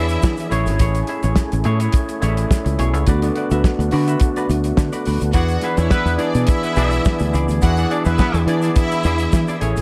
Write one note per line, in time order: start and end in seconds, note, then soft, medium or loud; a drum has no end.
0.00 0.16 E2 loud
0.00 0.48 E3 medium
0.00 0.54 E3 medium
0.00 0.48 B3 medium
0.00 0.48 D4 medium
0.00 0.12 E4 medium
0.00 0.47 E4 loud
0.00 0.50 E4 medium
0.00 0.48 G#4 medium
0.00 0.51 G#4 medium
0.00 0.51 C#5 medium
0.00 0.53 D5 loud
0.00 0.47 E5 loud
0.08 muted clean electric guitar stroke medium
0.08 closed hi-hat soft
0.08 shaker medium
0.22 0.35 E3 loud
0.22 muted clean electric guitar stroke soft
0.22 kick loud
0.22 snare loud
0.22 shaker loud
0.37 muted clean electric guitar stroke soft
0.37 closed hi-hat medium
0.37 shaker medium
0.50 0.68 A1 loud
0.50 1.42 A3 loud
0.50 5.32 A3 medium
0.50 3.05 C#4 medium
0.50 1.42 E4 loud
0.50 0.67 E4 medium
0.50 1.43 G#4 medium
0.50 3.05 G#4 medium
0.50 0.67 G#4 loud
0.50 1.43 C#5 loud
0.50 0.66 C#5 loud
0.50 closed hi-hat medium
0.50 shaker medium
0.66 0.77 G#1 medium
0.66 0.79 E4 soft
0.66 0.80 G#4 medium
0.66 0.79 C#5 medium
0.66 closed hi-hat medium
0.66 shaker medium
0.79 1.02 A1 loud
0.79 0.98 E4 medium
0.79 0.98 G#4 loud
0.79 0.98 C#5 loud
0.79 kick loud
0.79 closed hi-hat medium
0.79 shaker medium
0.95 closed hi-hat soft
0.95 shaker soft
1.07 1.23 E4 medium
1.07 1.23 G#4 medium
1.07 1.23 E5 medium
1.07 closed hi-hat medium
1.23 1.34 A1 loud
1.23 1.36 E4 medium
1.23 1.36 G#4 medium
1.23 1.36 C#5 medium
1.23 closed hi-hat soft
1.23 shaker medium
1.36 muted clean electric guitar stroke soft
1.36 kick loud
1.36 snare loud
1.36 shaker medium
1.52 1.63 A1 loud
1.52 muted clean electric guitar stroke soft
1.52 closed hi-hat soft
1.52 shaker medium
1.64 1.87 A2 loud
1.64 2.08 A3 medium
1.64 1.80 E4 medium
1.64 2.09 E4 medium
1.64 2.09 G#4 medium
1.64 1.79 G#4 medium
1.64 2.09 C#5 loud
1.64 1.79 C#5 medium
1.64 closed hi-hat medium
1.80 1.94 E4 medium
1.80 1.93 G#4 medium
1.80 1.93 C#5 medium
1.80 closed hi-hat medium
1.80 shaker medium
1.92 kick loud
1.92 closed hi-hat medium
1.92 shaker medium
2.09 muted clean electric guitar stroke soft
2.09 closed hi-hat soft
2.09 shaker medium
2.21 2.44 A1 medium
2.21 2.86 A3 medium
2.21 2.86 E4 medium
2.21 2.40 E4 medium
2.21 2.87 G#4 medium
2.21 2.37 G#4 medium
2.21 2.36 C#5 loud
2.21 2.29 D5 medium
2.21 closed hi-hat medium
2.21 shaker medium
2.29 2.90 E5 medium
2.37 muted clean electric guitar stroke soft
2.37 closed hi-hat soft
2.37 shaker medium
2.50 muted clean electric guitar stroke soft
2.50 kick loud
2.50 snare loud
2.50 shaker loud
2.65 2.76 C#2 medium
2.65 muted clean electric guitar stroke soft
2.65 closed hi-hat medium
2.65 shaker medium
2.79 2.93 B1 loud
2.79 2.94 E4 medium
2.79 2.94 G#4 medium
2.79 2.93 C#5 loud
2.79 closed hi-hat medium
2.79 shaker medium
2.93 3.04 C#2 medium
2.93 3.07 E4 soft
2.93 3.07 G#4 medium
2.93 3.07 C#5 medium
2.93 closed hi-hat soft
2.93 shaker medium
3.07 3.29 D2 loud
3.07 3.19 D3 medium
3.07 5.33 D3 medium
3.07 3.19 B3 medium
3.07 9.58 B3 medium
3.07 5.33 F#4 medium
3.07 3.26 F#4 medium
3.07 3.19 F#4 medium
3.07 3.26 B4 medium
3.07 3.19 D5 loud
3.07 3.26 D5 medium
3.07 kick medium
3.07 closed hi-hat medium
3.07 shaker medium
3.22 3.76 D3 medium
3.22 3.76 B3 medium
3.22 3.76 F#4 medium
3.22 3.76 D5 medium
3.22 closed hi-hat medium
3.22 shaker soft
3.36 3.50 F#4 medium
3.36 3.51 B4 medium
3.36 3.51 D5 medium
3.36 closed hi-hat medium
3.51 3.61 D2 loud
3.51 3.64 F#4 medium
3.51 3.64 B4 medium
3.51 3.64 E5 medium
3.51 closed hi-hat soft
3.51 shaker medium
3.64 kick loud
3.64 snare loud
3.64 shaker medium
3.79 3.89 D2 loud
3.79 muted clean electric guitar stroke medium
3.79 closed hi-hat soft
3.79 shaker medium
3.91 4.78 D3 medium
3.91 4.15 D3 medium
3.91 4.78 B3 medium
3.91 4.78 F#4 medium
3.91 4.08 F#4 medium
3.91 4.07 B4 medium
3.91 4.78 D5 medium
3.91 4.07 D5 medium
3.91 open hi-hat medium
4.08 4.21 F#4 medium
4.08 4.21 B4 medium
4.08 4.20 E5 medium
4.08 closed hi-hat medium
4.08 shaker medium
4.20 muted clean electric guitar stroke soft
4.20 kick loud
4.20 closed hi-hat loud
4.20 shaker medium
4.36 4.48 F#4 medium
4.36 4.49 B4 medium
4.36 4.50 D5 medium
4.36 closed hi-hat soft
4.36 shaker medium
4.49 4.71 D2 medium
4.49 muted clean electric guitar stroke soft
4.49 closed hi-hat medium
4.49 shaker medium
4.64 muted clean electric guitar stroke soft
4.64 closed hi-hat soft
4.64 shaker soft
4.77 4.89 D3 loud
4.77 muted clean electric guitar stroke soft
4.77 kick loud
4.77 snare loud
4.77 shaker loud
4.93 5.05 F#4 medium
4.93 5.05 B4 medium
4.93 5.06 D5 medium
4.93 closed hi-hat medium
4.93 shaker medium
5.05 5.19 D2 medium
5.05 5.21 F#4 medium
5.05 5.21 B4 medium
5.05 5.20 D5 medium
5.05 open hi-hat medium
5.05 shaker medium
5.21 5.32 D2 medium
5.21 muted clean electric guitar stroke soft
5.21 closed hi-hat soft
5.21 shaker medium
5.33 5.56 E2 loud
5.33 5.99 E3 medium
5.33 9.57 E3 medium
5.33 5.99 B3 medium
5.33 9.57 D4 medium
5.33 5.53 E4 medium
5.33 5.57 F#4 loud
5.33 9.57 G#4 medium
5.33 5.99 G#4 medium
5.33 5.53 G#4 medium
5.33 5.99 D5 loud
5.33 5.53 D5 medium
5.33 5.57 F#5 loud
5.33 kick loud
5.33 closed hi-hat medium
5.33 shaker medium
5.48 closed hi-hat medium
5.48 shaker medium
5.61 5.75 B3 medium
5.61 5.78 E4 medium
5.61 5.78 G#4 medium
5.61 5.75 B4 medium
5.61 5.78 E5 medium
5.61 snare soft
5.61 closed hi-hat medium
5.77 5.88 E2 medium
5.77 5.89 C#4 medium
5.77 6.18 E4 medium
5.77 5.91 E4 medium
5.77 5.91 G#4 medium
5.77 5.88 C#5 medium
5.77 5.91 D5 medium
5.77 6.17 E5 medium
5.77 closed hi-hat soft
5.77 shaker medium
5.90 6.14 B3 loud
5.90 6.14 B4 loud
5.90 muted clean electric guitar stroke soft
5.90 kick loud
5.90 snare loud
5.90 shaker medium
6.06 6.16 E2 medium
6.06 muted clean electric guitar stroke soft
6.06 closed hi-hat soft
6.06 shaker soft
6.18 6.63 E3 medium
6.18 6.63 B3 medium
6.18 6.43 D4 medium
6.18 6.34 E4 medium
6.18 6.34 G#4 medium
6.18 6.63 G#4 medium
6.18 6.42 D5 loud
6.18 6.64 D5 medium
6.18 6.34 D5 medium
6.18 closed hi-hat medium
6.35 6.45 B2 medium
6.35 6.48 E4 medium
6.35 6.48 G#4 medium
6.35 6.48 D5 medium
6.35 closed hi-hat soft
6.35 shaker medium
6.47 7.30 E4 loud
6.47 7.30 E5 loud
6.47 kick loud
6.47 closed hi-hat loud
6.47 shaker medium
6.63 6.74 B3 medium
6.63 6.74 B4 medium
6.63 muted clean electric guitar stroke medium
6.63 closed hi-hat soft
6.63 shaker medium
6.75 6.99 B1 loud
6.75 7.41 E3 medium
6.75 7.41 B3 medium
6.75 6.89 D4 medium
6.75 6.95 E4 medium
6.75 7.41 G#4 medium
6.75 6.92 G#4 loud
6.75 7.41 D5 medium
6.75 6.89 D5 loud
6.75 6.91 D5 loud
6.75 closed hi-hat medium
6.75 shaker medium
6.91 muted clean electric guitar stroke medium
6.91 closed hi-hat soft
6.91 shaker soft
7.05 muted clean electric guitar stroke soft
7.05 kick loud
7.05 snare loud
7.05 shaker loud
7.19 7.36 D2 medium
7.19 muted clean electric guitar stroke soft
7.19 closed hi-hat medium
7.19 shaker medium
7.33 7.46 C#2 medium
7.33 7.49 E4 medium
7.33 7.48 G#4 medium
7.33 7.47 D5 medium
7.33 closed hi-hat medium
7.33 shaker medium
7.48 7.59 D2 medium
7.48 7.61 E4 medium
7.48 7.62 G#4 medium
7.48 7.61 D5 medium
7.48 closed hi-hat soft
7.48 shaker medium
7.62 7.85 E2 loud
7.62 7.74 E3 medium
7.62 7.74 B3 medium
7.62 7.80 E4 medium
7.62 7.86 F#4 medium
7.62 7.81 G#4 loud
7.62 7.74 G#4 medium
7.62 7.81 D5 loud
7.62 7.74 E5 medium
7.62 7.86 F#5 loud
7.62 kick medium
7.62 closed hi-hat medium
7.62 shaker medium
7.77 8.31 E3 loud
7.77 8.31 B3 medium
7.77 8.31 G#4 medium
7.77 8.31 D5 medium
7.77 closed hi-hat medium
7.77 shaker soft
7.90 8.03 D4 medium
7.90 8.05 E4 medium
7.90 8.04 G#4 medium
7.90 8.03 D5 loud
7.90 8.05 D5 medium
7.90 closed hi-hat medium
8.05 8.16 E2 loud
8.05 8.17 B3 medium
8.05 8.18 E4 medium
8.05 8.46 E4 medium
8.05 8.18 G#4 medium
8.05 8.16 B4 medium
8.05 8.18 E5 medium
8.05 8.46 E5 loud
8.05 closed hi-hat soft
8.05 shaker medium
8.18 8.42 B3 loud
8.18 8.42 B4 loud
8.18 kick loud
8.18 snare loud
8.18 shaker medium
8.34 8.44 E2 loud
8.34 muted clean electric guitar stroke medium
8.34 closed hi-hat soft
8.34 shaker medium
8.47 8.69 E3 loud
8.47 9.33 E3 medium
8.47 9.33 B3 medium
8.47 8.71 D4 medium
8.47 8.62 E4 medium
8.47 9.33 G#4 medium
8.47 8.62 G#4 medium
8.47 9.33 D5 medium
8.47 8.71 D5 medium
8.47 8.62 D5 medium
8.47 closed hi-hat medium
8.62 8.76 E4 medium
8.62 8.76 G#4 medium
8.62 8.75 E5 medium
8.62 closed hi-hat soft
8.62 shaker medium
8.76 9.57 E4 loud
8.76 9.58 E5 loud
8.76 kick loud
8.76 closed hi-hat loud
8.76 shaker medium
8.91 muted clean electric guitar stroke medium
8.91 closed hi-hat medium
8.91 shaker medium
9.03 9.26 E2 medium
9.03 9.23 E4 medium
9.03 9.19 G#4 medium
9.03 9.19 D5 loud
9.03 closed hi-hat medium
9.03 shaker medium
9.18 closed hi-hat soft
9.18 shaker soft
9.33 9.45 E3 loud
9.33 muted clean electric guitar stroke soft
9.33 kick loud
9.33 snare loud
9.33 shaker loud
9.48 9.60 E4 medium
9.48 9.61 G#4 medium
9.48 9.62 D5 medium
9.48 closed hi-hat medium
9.48 shaker medium
9.59 9.73 A1 loud
9.59 9.82 A3 medium
9.59 9.82 A3 loud
9.59 9.82 C#4 medium
9.59 9.75 E4 medium
9.59 9.82 E4 medium
9.59 9.82 G#4 medium
9.59 9.76 G#4 medium
9.59 9.82 G#4 medium
9.59 9.74 C#5 medium
9.59 9.82 C#5 loud
9.59 closed hi-hat medium
9.59 shaker medium
9.76 9.82 G#1 medium
9.76 muted clean electric guitar stroke medium
9.76 closed hi-hat medium
9.76 shaker medium